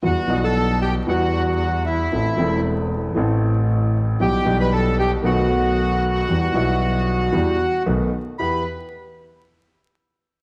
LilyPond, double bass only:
\new Staff \with { instrumentName = "Double bass" } { \clef bass \time 4/4 \key e \minor \tempo 4 = 115 e,8 b,,4. e,2 | a,,8 e,,4. a,,2 | b,,8 b,,4. b,,2 | e,8 b,,4. e,8 r8 b,,8 r8 |
e,8 r2. r8 | }